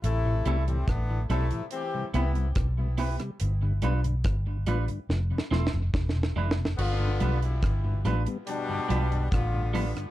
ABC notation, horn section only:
X:1
M:4/4
L:1/16
Q:1/4=71
K:Gmix
V:1 name="Horn section"
[C,A,E]3 [A,,G,C] [D,B,D]2 [C,A,E]2 [E,CG]2 [C,B,E]2 z4 | z16 | [D,B,F]3 [B,,G,E]3 z2 [B,,G,D]4 [D,B,F]3 z |]